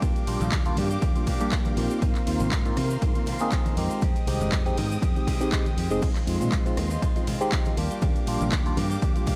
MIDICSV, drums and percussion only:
0, 0, Header, 1, 2, 480
1, 0, Start_track
1, 0, Tempo, 500000
1, 22, Time_signature, 4, 2, 24, 8
1, 8983, End_track
2, 0, Start_track
2, 0, Title_t, "Drums"
2, 20, Note_on_c, 9, 63, 80
2, 21, Note_on_c, 9, 36, 112
2, 21, Note_on_c, 9, 42, 94
2, 21, Note_on_c, 9, 51, 58
2, 32, Note_on_c, 9, 82, 68
2, 116, Note_off_c, 9, 63, 0
2, 117, Note_off_c, 9, 36, 0
2, 117, Note_off_c, 9, 42, 0
2, 117, Note_off_c, 9, 51, 0
2, 128, Note_off_c, 9, 82, 0
2, 154, Note_on_c, 9, 42, 40
2, 155, Note_on_c, 9, 82, 39
2, 250, Note_off_c, 9, 42, 0
2, 251, Note_off_c, 9, 82, 0
2, 262, Note_on_c, 9, 46, 103
2, 262, Note_on_c, 9, 51, 84
2, 358, Note_off_c, 9, 46, 0
2, 358, Note_off_c, 9, 51, 0
2, 387, Note_on_c, 9, 63, 66
2, 392, Note_on_c, 9, 42, 37
2, 395, Note_on_c, 9, 82, 80
2, 397, Note_on_c, 9, 64, 67
2, 483, Note_off_c, 9, 63, 0
2, 488, Note_off_c, 9, 42, 0
2, 491, Note_off_c, 9, 82, 0
2, 493, Note_off_c, 9, 64, 0
2, 496, Note_on_c, 9, 39, 116
2, 500, Note_on_c, 9, 42, 92
2, 500, Note_on_c, 9, 51, 59
2, 501, Note_on_c, 9, 36, 115
2, 501, Note_on_c, 9, 82, 72
2, 592, Note_off_c, 9, 39, 0
2, 596, Note_off_c, 9, 42, 0
2, 596, Note_off_c, 9, 51, 0
2, 597, Note_off_c, 9, 36, 0
2, 597, Note_off_c, 9, 82, 0
2, 626, Note_on_c, 9, 82, 41
2, 630, Note_on_c, 9, 42, 39
2, 722, Note_off_c, 9, 82, 0
2, 726, Note_off_c, 9, 42, 0
2, 736, Note_on_c, 9, 63, 91
2, 740, Note_on_c, 9, 46, 90
2, 740, Note_on_c, 9, 51, 83
2, 832, Note_off_c, 9, 63, 0
2, 836, Note_off_c, 9, 46, 0
2, 836, Note_off_c, 9, 51, 0
2, 871, Note_on_c, 9, 42, 40
2, 871, Note_on_c, 9, 82, 77
2, 967, Note_off_c, 9, 42, 0
2, 967, Note_off_c, 9, 82, 0
2, 977, Note_on_c, 9, 82, 71
2, 979, Note_on_c, 9, 42, 91
2, 979, Note_on_c, 9, 51, 58
2, 980, Note_on_c, 9, 36, 114
2, 1073, Note_off_c, 9, 82, 0
2, 1075, Note_off_c, 9, 42, 0
2, 1075, Note_off_c, 9, 51, 0
2, 1076, Note_off_c, 9, 36, 0
2, 1107, Note_on_c, 9, 63, 58
2, 1110, Note_on_c, 9, 42, 39
2, 1111, Note_on_c, 9, 82, 45
2, 1203, Note_off_c, 9, 63, 0
2, 1206, Note_off_c, 9, 42, 0
2, 1207, Note_off_c, 9, 82, 0
2, 1214, Note_on_c, 9, 64, 72
2, 1219, Note_on_c, 9, 46, 105
2, 1219, Note_on_c, 9, 51, 79
2, 1220, Note_on_c, 9, 36, 61
2, 1310, Note_off_c, 9, 64, 0
2, 1315, Note_off_c, 9, 46, 0
2, 1315, Note_off_c, 9, 51, 0
2, 1316, Note_off_c, 9, 36, 0
2, 1346, Note_on_c, 9, 82, 85
2, 1350, Note_on_c, 9, 42, 41
2, 1442, Note_off_c, 9, 82, 0
2, 1446, Note_off_c, 9, 42, 0
2, 1455, Note_on_c, 9, 39, 105
2, 1459, Note_on_c, 9, 36, 116
2, 1459, Note_on_c, 9, 42, 89
2, 1459, Note_on_c, 9, 51, 55
2, 1459, Note_on_c, 9, 82, 68
2, 1551, Note_off_c, 9, 39, 0
2, 1555, Note_off_c, 9, 36, 0
2, 1555, Note_off_c, 9, 42, 0
2, 1555, Note_off_c, 9, 51, 0
2, 1555, Note_off_c, 9, 82, 0
2, 1580, Note_on_c, 9, 82, 37
2, 1586, Note_on_c, 9, 63, 89
2, 1591, Note_on_c, 9, 42, 40
2, 1676, Note_off_c, 9, 82, 0
2, 1682, Note_off_c, 9, 63, 0
2, 1687, Note_off_c, 9, 42, 0
2, 1700, Note_on_c, 9, 46, 92
2, 1700, Note_on_c, 9, 51, 83
2, 1796, Note_off_c, 9, 46, 0
2, 1796, Note_off_c, 9, 51, 0
2, 1829, Note_on_c, 9, 82, 74
2, 1830, Note_on_c, 9, 42, 39
2, 1925, Note_off_c, 9, 82, 0
2, 1926, Note_off_c, 9, 42, 0
2, 1939, Note_on_c, 9, 36, 113
2, 1940, Note_on_c, 9, 42, 96
2, 1940, Note_on_c, 9, 51, 58
2, 1941, Note_on_c, 9, 63, 85
2, 1942, Note_on_c, 9, 82, 67
2, 2035, Note_off_c, 9, 36, 0
2, 2036, Note_off_c, 9, 42, 0
2, 2036, Note_off_c, 9, 51, 0
2, 2037, Note_off_c, 9, 63, 0
2, 2038, Note_off_c, 9, 82, 0
2, 2065, Note_on_c, 9, 39, 38
2, 2069, Note_on_c, 9, 42, 42
2, 2069, Note_on_c, 9, 82, 43
2, 2161, Note_off_c, 9, 39, 0
2, 2165, Note_off_c, 9, 42, 0
2, 2165, Note_off_c, 9, 82, 0
2, 2179, Note_on_c, 9, 46, 103
2, 2179, Note_on_c, 9, 51, 87
2, 2275, Note_off_c, 9, 46, 0
2, 2275, Note_off_c, 9, 51, 0
2, 2301, Note_on_c, 9, 82, 76
2, 2308, Note_on_c, 9, 63, 60
2, 2309, Note_on_c, 9, 42, 39
2, 2311, Note_on_c, 9, 64, 70
2, 2397, Note_off_c, 9, 82, 0
2, 2404, Note_off_c, 9, 63, 0
2, 2405, Note_off_c, 9, 42, 0
2, 2407, Note_off_c, 9, 64, 0
2, 2415, Note_on_c, 9, 39, 117
2, 2419, Note_on_c, 9, 36, 115
2, 2419, Note_on_c, 9, 42, 96
2, 2419, Note_on_c, 9, 51, 60
2, 2423, Note_on_c, 9, 82, 76
2, 2511, Note_off_c, 9, 39, 0
2, 2515, Note_off_c, 9, 36, 0
2, 2515, Note_off_c, 9, 42, 0
2, 2515, Note_off_c, 9, 51, 0
2, 2519, Note_off_c, 9, 82, 0
2, 2549, Note_on_c, 9, 42, 40
2, 2551, Note_on_c, 9, 82, 43
2, 2645, Note_off_c, 9, 42, 0
2, 2647, Note_off_c, 9, 82, 0
2, 2655, Note_on_c, 9, 63, 83
2, 2659, Note_on_c, 9, 37, 85
2, 2659, Note_on_c, 9, 46, 92
2, 2659, Note_on_c, 9, 51, 87
2, 2751, Note_off_c, 9, 63, 0
2, 2755, Note_off_c, 9, 37, 0
2, 2755, Note_off_c, 9, 46, 0
2, 2755, Note_off_c, 9, 51, 0
2, 2788, Note_on_c, 9, 42, 44
2, 2789, Note_on_c, 9, 82, 86
2, 2884, Note_off_c, 9, 42, 0
2, 2885, Note_off_c, 9, 82, 0
2, 2897, Note_on_c, 9, 82, 64
2, 2899, Note_on_c, 9, 36, 114
2, 2899, Note_on_c, 9, 42, 98
2, 2899, Note_on_c, 9, 51, 58
2, 2993, Note_off_c, 9, 82, 0
2, 2995, Note_off_c, 9, 36, 0
2, 2995, Note_off_c, 9, 42, 0
2, 2995, Note_off_c, 9, 51, 0
2, 3023, Note_on_c, 9, 82, 39
2, 3028, Note_on_c, 9, 42, 42
2, 3029, Note_on_c, 9, 63, 67
2, 3119, Note_off_c, 9, 82, 0
2, 3124, Note_off_c, 9, 42, 0
2, 3125, Note_off_c, 9, 63, 0
2, 3132, Note_on_c, 9, 64, 78
2, 3139, Note_on_c, 9, 46, 100
2, 3139, Note_on_c, 9, 51, 84
2, 3228, Note_off_c, 9, 64, 0
2, 3235, Note_off_c, 9, 46, 0
2, 3235, Note_off_c, 9, 51, 0
2, 3255, Note_on_c, 9, 82, 80
2, 3270, Note_on_c, 9, 42, 40
2, 3351, Note_off_c, 9, 82, 0
2, 3366, Note_off_c, 9, 42, 0
2, 3373, Note_on_c, 9, 82, 75
2, 3377, Note_on_c, 9, 39, 116
2, 3379, Note_on_c, 9, 36, 120
2, 3381, Note_on_c, 9, 42, 91
2, 3381, Note_on_c, 9, 51, 58
2, 3469, Note_off_c, 9, 82, 0
2, 3473, Note_off_c, 9, 39, 0
2, 3475, Note_off_c, 9, 36, 0
2, 3477, Note_off_c, 9, 42, 0
2, 3477, Note_off_c, 9, 51, 0
2, 3512, Note_on_c, 9, 42, 41
2, 3512, Note_on_c, 9, 82, 40
2, 3513, Note_on_c, 9, 63, 84
2, 3608, Note_off_c, 9, 42, 0
2, 3608, Note_off_c, 9, 82, 0
2, 3609, Note_off_c, 9, 63, 0
2, 3620, Note_on_c, 9, 46, 87
2, 3620, Note_on_c, 9, 51, 84
2, 3716, Note_off_c, 9, 46, 0
2, 3716, Note_off_c, 9, 51, 0
2, 3748, Note_on_c, 9, 82, 75
2, 3752, Note_on_c, 9, 42, 40
2, 3844, Note_off_c, 9, 82, 0
2, 3848, Note_off_c, 9, 42, 0
2, 3854, Note_on_c, 9, 82, 64
2, 3860, Note_on_c, 9, 36, 113
2, 3860, Note_on_c, 9, 63, 89
2, 3861, Note_on_c, 9, 42, 104
2, 3861, Note_on_c, 9, 51, 58
2, 3950, Note_off_c, 9, 82, 0
2, 3956, Note_off_c, 9, 36, 0
2, 3956, Note_off_c, 9, 63, 0
2, 3957, Note_off_c, 9, 42, 0
2, 3957, Note_off_c, 9, 51, 0
2, 3993, Note_on_c, 9, 42, 41
2, 3994, Note_on_c, 9, 82, 39
2, 4089, Note_off_c, 9, 42, 0
2, 4090, Note_off_c, 9, 82, 0
2, 4103, Note_on_c, 9, 46, 109
2, 4103, Note_on_c, 9, 51, 84
2, 4199, Note_off_c, 9, 46, 0
2, 4199, Note_off_c, 9, 51, 0
2, 4232, Note_on_c, 9, 64, 74
2, 4232, Note_on_c, 9, 82, 73
2, 4234, Note_on_c, 9, 42, 42
2, 4235, Note_on_c, 9, 63, 61
2, 4328, Note_off_c, 9, 64, 0
2, 4328, Note_off_c, 9, 82, 0
2, 4330, Note_off_c, 9, 42, 0
2, 4331, Note_off_c, 9, 63, 0
2, 4339, Note_on_c, 9, 39, 122
2, 4341, Note_on_c, 9, 36, 118
2, 4343, Note_on_c, 9, 42, 99
2, 4343, Note_on_c, 9, 51, 60
2, 4346, Note_on_c, 9, 82, 70
2, 4435, Note_off_c, 9, 39, 0
2, 4437, Note_off_c, 9, 36, 0
2, 4439, Note_off_c, 9, 42, 0
2, 4439, Note_off_c, 9, 51, 0
2, 4442, Note_off_c, 9, 82, 0
2, 4474, Note_on_c, 9, 42, 42
2, 4479, Note_on_c, 9, 82, 41
2, 4570, Note_off_c, 9, 42, 0
2, 4575, Note_off_c, 9, 82, 0
2, 4584, Note_on_c, 9, 46, 91
2, 4584, Note_on_c, 9, 51, 86
2, 4588, Note_on_c, 9, 63, 94
2, 4680, Note_off_c, 9, 46, 0
2, 4680, Note_off_c, 9, 51, 0
2, 4684, Note_off_c, 9, 63, 0
2, 4715, Note_on_c, 9, 42, 44
2, 4719, Note_on_c, 9, 82, 87
2, 4811, Note_off_c, 9, 42, 0
2, 4815, Note_off_c, 9, 82, 0
2, 4821, Note_on_c, 9, 36, 114
2, 4822, Note_on_c, 9, 82, 73
2, 4825, Note_on_c, 9, 42, 96
2, 4825, Note_on_c, 9, 51, 58
2, 4917, Note_off_c, 9, 36, 0
2, 4918, Note_off_c, 9, 82, 0
2, 4921, Note_off_c, 9, 42, 0
2, 4921, Note_off_c, 9, 51, 0
2, 4952, Note_on_c, 9, 82, 40
2, 4954, Note_on_c, 9, 63, 65
2, 4957, Note_on_c, 9, 42, 43
2, 5048, Note_off_c, 9, 82, 0
2, 5050, Note_off_c, 9, 63, 0
2, 5053, Note_off_c, 9, 42, 0
2, 5061, Note_on_c, 9, 36, 59
2, 5062, Note_on_c, 9, 64, 72
2, 5066, Note_on_c, 9, 46, 102
2, 5066, Note_on_c, 9, 51, 80
2, 5157, Note_off_c, 9, 36, 0
2, 5158, Note_off_c, 9, 64, 0
2, 5162, Note_off_c, 9, 46, 0
2, 5162, Note_off_c, 9, 51, 0
2, 5191, Note_on_c, 9, 82, 78
2, 5197, Note_on_c, 9, 42, 42
2, 5287, Note_off_c, 9, 82, 0
2, 5293, Note_off_c, 9, 42, 0
2, 5300, Note_on_c, 9, 82, 70
2, 5301, Note_on_c, 9, 39, 119
2, 5302, Note_on_c, 9, 36, 120
2, 5305, Note_on_c, 9, 42, 95
2, 5305, Note_on_c, 9, 51, 55
2, 5396, Note_off_c, 9, 82, 0
2, 5397, Note_off_c, 9, 39, 0
2, 5398, Note_off_c, 9, 36, 0
2, 5401, Note_off_c, 9, 42, 0
2, 5401, Note_off_c, 9, 51, 0
2, 5426, Note_on_c, 9, 63, 77
2, 5434, Note_on_c, 9, 82, 38
2, 5436, Note_on_c, 9, 42, 41
2, 5522, Note_off_c, 9, 63, 0
2, 5530, Note_off_c, 9, 82, 0
2, 5532, Note_off_c, 9, 42, 0
2, 5546, Note_on_c, 9, 46, 94
2, 5546, Note_on_c, 9, 51, 83
2, 5642, Note_off_c, 9, 46, 0
2, 5642, Note_off_c, 9, 51, 0
2, 5672, Note_on_c, 9, 82, 88
2, 5675, Note_on_c, 9, 42, 42
2, 5768, Note_off_c, 9, 82, 0
2, 5771, Note_off_c, 9, 42, 0
2, 5779, Note_on_c, 9, 82, 70
2, 5780, Note_on_c, 9, 63, 96
2, 5782, Note_on_c, 9, 36, 117
2, 5784, Note_on_c, 9, 42, 101
2, 5784, Note_on_c, 9, 49, 78
2, 5784, Note_on_c, 9, 51, 58
2, 5875, Note_off_c, 9, 82, 0
2, 5876, Note_off_c, 9, 63, 0
2, 5878, Note_off_c, 9, 36, 0
2, 5880, Note_off_c, 9, 42, 0
2, 5880, Note_off_c, 9, 49, 0
2, 5880, Note_off_c, 9, 51, 0
2, 5909, Note_on_c, 9, 39, 39
2, 5913, Note_on_c, 9, 42, 42
2, 5916, Note_on_c, 9, 82, 43
2, 6005, Note_off_c, 9, 39, 0
2, 6009, Note_off_c, 9, 42, 0
2, 6012, Note_off_c, 9, 82, 0
2, 6023, Note_on_c, 9, 46, 105
2, 6023, Note_on_c, 9, 51, 80
2, 6119, Note_off_c, 9, 46, 0
2, 6119, Note_off_c, 9, 51, 0
2, 6152, Note_on_c, 9, 64, 82
2, 6153, Note_on_c, 9, 42, 39
2, 6157, Note_on_c, 9, 82, 85
2, 6159, Note_on_c, 9, 63, 60
2, 6248, Note_off_c, 9, 64, 0
2, 6249, Note_off_c, 9, 42, 0
2, 6253, Note_off_c, 9, 82, 0
2, 6255, Note_off_c, 9, 63, 0
2, 6259, Note_on_c, 9, 39, 125
2, 6262, Note_on_c, 9, 36, 119
2, 6263, Note_on_c, 9, 42, 99
2, 6263, Note_on_c, 9, 51, 55
2, 6265, Note_on_c, 9, 82, 74
2, 6355, Note_off_c, 9, 39, 0
2, 6358, Note_off_c, 9, 36, 0
2, 6359, Note_off_c, 9, 42, 0
2, 6359, Note_off_c, 9, 51, 0
2, 6361, Note_off_c, 9, 82, 0
2, 6393, Note_on_c, 9, 42, 42
2, 6398, Note_on_c, 9, 82, 45
2, 6489, Note_off_c, 9, 42, 0
2, 6494, Note_off_c, 9, 82, 0
2, 6502, Note_on_c, 9, 37, 74
2, 6502, Note_on_c, 9, 46, 93
2, 6502, Note_on_c, 9, 51, 80
2, 6505, Note_on_c, 9, 63, 96
2, 6598, Note_off_c, 9, 37, 0
2, 6598, Note_off_c, 9, 46, 0
2, 6598, Note_off_c, 9, 51, 0
2, 6601, Note_off_c, 9, 63, 0
2, 6628, Note_on_c, 9, 82, 82
2, 6634, Note_on_c, 9, 42, 43
2, 6724, Note_off_c, 9, 82, 0
2, 6730, Note_off_c, 9, 42, 0
2, 6741, Note_on_c, 9, 36, 116
2, 6743, Note_on_c, 9, 42, 101
2, 6743, Note_on_c, 9, 51, 57
2, 6748, Note_on_c, 9, 82, 74
2, 6837, Note_off_c, 9, 36, 0
2, 6839, Note_off_c, 9, 42, 0
2, 6839, Note_off_c, 9, 51, 0
2, 6844, Note_off_c, 9, 82, 0
2, 6871, Note_on_c, 9, 63, 71
2, 6873, Note_on_c, 9, 42, 41
2, 6877, Note_on_c, 9, 82, 42
2, 6967, Note_off_c, 9, 63, 0
2, 6969, Note_off_c, 9, 42, 0
2, 6973, Note_off_c, 9, 82, 0
2, 6982, Note_on_c, 9, 46, 112
2, 6982, Note_on_c, 9, 51, 79
2, 6984, Note_on_c, 9, 64, 88
2, 7078, Note_off_c, 9, 46, 0
2, 7078, Note_off_c, 9, 51, 0
2, 7080, Note_off_c, 9, 64, 0
2, 7112, Note_on_c, 9, 42, 42
2, 7114, Note_on_c, 9, 82, 87
2, 7208, Note_off_c, 9, 42, 0
2, 7210, Note_off_c, 9, 82, 0
2, 7219, Note_on_c, 9, 39, 116
2, 7222, Note_on_c, 9, 36, 118
2, 7223, Note_on_c, 9, 42, 97
2, 7223, Note_on_c, 9, 51, 52
2, 7224, Note_on_c, 9, 82, 66
2, 7315, Note_off_c, 9, 39, 0
2, 7318, Note_off_c, 9, 36, 0
2, 7319, Note_off_c, 9, 42, 0
2, 7319, Note_off_c, 9, 51, 0
2, 7320, Note_off_c, 9, 82, 0
2, 7344, Note_on_c, 9, 82, 42
2, 7353, Note_on_c, 9, 42, 42
2, 7360, Note_on_c, 9, 63, 82
2, 7440, Note_off_c, 9, 82, 0
2, 7449, Note_off_c, 9, 42, 0
2, 7456, Note_off_c, 9, 63, 0
2, 7463, Note_on_c, 9, 46, 93
2, 7463, Note_on_c, 9, 51, 79
2, 7559, Note_off_c, 9, 46, 0
2, 7559, Note_off_c, 9, 51, 0
2, 7593, Note_on_c, 9, 42, 41
2, 7594, Note_on_c, 9, 82, 86
2, 7689, Note_off_c, 9, 42, 0
2, 7690, Note_off_c, 9, 82, 0
2, 7697, Note_on_c, 9, 82, 70
2, 7698, Note_on_c, 9, 63, 95
2, 7701, Note_on_c, 9, 42, 94
2, 7701, Note_on_c, 9, 51, 55
2, 7702, Note_on_c, 9, 36, 120
2, 7793, Note_off_c, 9, 82, 0
2, 7794, Note_off_c, 9, 63, 0
2, 7797, Note_off_c, 9, 42, 0
2, 7797, Note_off_c, 9, 51, 0
2, 7798, Note_off_c, 9, 36, 0
2, 7830, Note_on_c, 9, 82, 43
2, 7832, Note_on_c, 9, 42, 41
2, 7926, Note_off_c, 9, 82, 0
2, 7928, Note_off_c, 9, 42, 0
2, 7941, Note_on_c, 9, 46, 111
2, 7941, Note_on_c, 9, 51, 81
2, 8037, Note_off_c, 9, 46, 0
2, 8037, Note_off_c, 9, 51, 0
2, 8071, Note_on_c, 9, 42, 40
2, 8074, Note_on_c, 9, 82, 87
2, 8076, Note_on_c, 9, 63, 66
2, 8080, Note_on_c, 9, 64, 82
2, 8167, Note_off_c, 9, 42, 0
2, 8170, Note_off_c, 9, 82, 0
2, 8172, Note_off_c, 9, 63, 0
2, 8176, Note_off_c, 9, 64, 0
2, 8177, Note_on_c, 9, 39, 127
2, 8181, Note_on_c, 9, 36, 126
2, 8181, Note_on_c, 9, 42, 93
2, 8181, Note_on_c, 9, 51, 55
2, 8182, Note_on_c, 9, 82, 67
2, 8273, Note_off_c, 9, 39, 0
2, 8277, Note_off_c, 9, 36, 0
2, 8277, Note_off_c, 9, 42, 0
2, 8277, Note_off_c, 9, 51, 0
2, 8278, Note_off_c, 9, 82, 0
2, 8311, Note_on_c, 9, 82, 36
2, 8312, Note_on_c, 9, 42, 43
2, 8407, Note_off_c, 9, 82, 0
2, 8408, Note_off_c, 9, 42, 0
2, 8421, Note_on_c, 9, 63, 95
2, 8422, Note_on_c, 9, 46, 101
2, 8422, Note_on_c, 9, 51, 81
2, 8517, Note_off_c, 9, 63, 0
2, 8518, Note_off_c, 9, 46, 0
2, 8518, Note_off_c, 9, 51, 0
2, 8551, Note_on_c, 9, 42, 42
2, 8556, Note_on_c, 9, 82, 82
2, 8647, Note_off_c, 9, 42, 0
2, 8652, Note_off_c, 9, 82, 0
2, 8659, Note_on_c, 9, 82, 64
2, 8661, Note_on_c, 9, 36, 121
2, 8662, Note_on_c, 9, 42, 91
2, 8662, Note_on_c, 9, 51, 55
2, 8755, Note_off_c, 9, 82, 0
2, 8757, Note_off_c, 9, 36, 0
2, 8758, Note_off_c, 9, 42, 0
2, 8758, Note_off_c, 9, 51, 0
2, 8791, Note_on_c, 9, 42, 43
2, 8791, Note_on_c, 9, 63, 70
2, 8796, Note_on_c, 9, 82, 39
2, 8887, Note_off_c, 9, 42, 0
2, 8887, Note_off_c, 9, 63, 0
2, 8892, Note_off_c, 9, 82, 0
2, 8895, Note_on_c, 9, 64, 88
2, 8900, Note_on_c, 9, 46, 110
2, 8900, Note_on_c, 9, 51, 77
2, 8901, Note_on_c, 9, 36, 64
2, 8983, Note_off_c, 9, 36, 0
2, 8983, Note_off_c, 9, 46, 0
2, 8983, Note_off_c, 9, 51, 0
2, 8983, Note_off_c, 9, 64, 0
2, 8983, End_track
0, 0, End_of_file